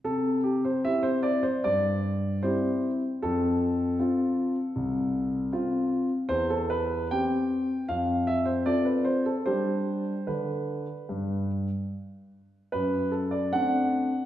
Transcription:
0.04 C3 A4
0.44 G4
0.65 C5
0.85 C4 E4 G4 E5
1.03 C5
1.23 D5
1.43 C5
1.64 G2 D5
2.43 C4 E4 G4 C5
3.22 F2 A4
3.99 C4 F4
4.76 C2
5.52 C4 F4
6.29 E2 C5
6.50 A4
6.70 B4
7.11 C4 G4 G5
7.89 F2 F5
8.27 E5
8.46 C5
8.65 C4 F4 A4 D5
8.85 B4
9.05 C5
9.26 A4
9.46 G3 D4 G4 C5
10.27 D3 B4
11.09 G2
12.72 F#2 B4
13.11 A4
13.31 D5
13.53 A3 C4 D4 F#5

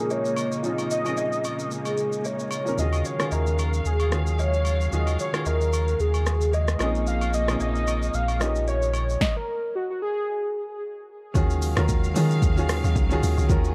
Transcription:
Already playing: A#2 C#3 F3 G#3 A#3 C4 C#4 D#4 G#4
0.10 C#5, low woodblock, shaker
0.25 shaker
0.36 high agogo, shaker
0.52 shaker
0.63 A#2 F3 C4 C#4 D#4 F4 D#5, shaker
0.78 high agogo, shaker
0.91 D#5, shaker
1.04 A#2 F3 C4 C#4 D#4 G#4, high agogo, shaker
1.17 low woodblock, shaker
1.33 shaker
1.44 high agogo, shaker
1.59 shaker
1.71 G#4, shaker
1.85 high agogo, shaker
1.98 shaker
2.13 shaker
2.25 C#5, low woodblock, shaker
2.39 shaker
2.51 high agogo, shaker
2.65 A#2 F3 C4 C#4 D#4 A#4, shaker
2.77 D#2 D#3 F#3 C#4 F4 F#4 G#4 D#5 F5, shaker
2.93 high agogo, shaker
3.05 C#5, shaker
3.18 D#3 C#4 F4 F#4 G#4, cross-stick, high agogo, shaker
3.32 D#2 A#4, low woodblock, shaker
3.47 shaker
3.59 high agogo, shaker
3.74 shaker
3.85 D#2 G#4, shaker
4.00 high agogo, shaker
4.11 D#3 C#4 F4 F#4 G#4, cross-stick, shaker
4.27 shaker
4.39 C#5, low woodblock, shaker
4.54 shaker
4.65 high agogo, shaker
4.81 shaker
4.91 D#2 D#3 C#4 F4 F#4 G#4 D#5, shaker
5.07 high agogo, shaker
5.19 C#5, shaker
5.33 D#3 C#4 F4 F#4 G#4, cross-stick, high agogo, shaker
5.46 D#2 A#4, low woodblock, shaker
5.61 shaker
5.73 high agogo, shaker
5.88 shaker
6.00 D#2 G#4, shaker
6.14 high agogo, shaker
6.26 cross-stick, shaker
6.41 shaker
6.53 D#5, low woodblock, shaker
6.68 cross-stick, shaker
6.79 A#1 A#2 F3 A#3 C4 C#4 D#4 G#4, cross-stick, high agogo, shaker
6.95 shaker
7.07 F5, shaker
7.21 high agogo, shaker
7.34 D#5, shaker
7.47 A#2 F3 C4 C#4 D#4 G#4, cross-stick, high agogo, shaker
7.60 A#1 D#5, low woodblock, shaker
7.76 shaker
7.87 high agogo, shaker
8.02 shaker
8.14 A#1 F5, shaker
8.28 high agogo, shaker
8.39 A#2 F3 A#3 C#4 D#4 G4 D#5, cross-stick, shaker
8.56 shaker
8.68 C#5, low woodblock, shaker
8.82 shaker
8.94 high agogo, shaker
9.09 shaker
9.21 D#5, kick, snare
9.37 A#4
9.75 F#4
9.90 F#4
10.02 G#4
11.34 D#2 C#3 D#3 F#3 G#3 C#4 F4 F#4 G#4 F5, kick, shaker
11.50 shaker
11.62 open hi-hat, shaker
11.75 D#2 D#3 C#4 F4 F#4 A#4, cross-stick, shaker
11.89 kick, shaker
12.04 shaker
12.14 D#3 C#4 F4 F#4 G#4, open hi-hat, shaker
12.31 shaker
12.42 D#2, kick, shaker
12.56 D#3 C#4 F4 F#4 G#4, shaker
12.69 cross-stick, open hi-hat, shaker
12.84 D#2, shaker
12.96 C#2, kick, shaker
13.09 D#3 C#4 F4 F#4 G#4, shaker
13.23 D#2, open hi-hat, shaker
13.38 C#2, shaker
13.48 D#2 D#3 C#4 F4 F#4 G#4 A#4, kick, shaker
13.65 shaker

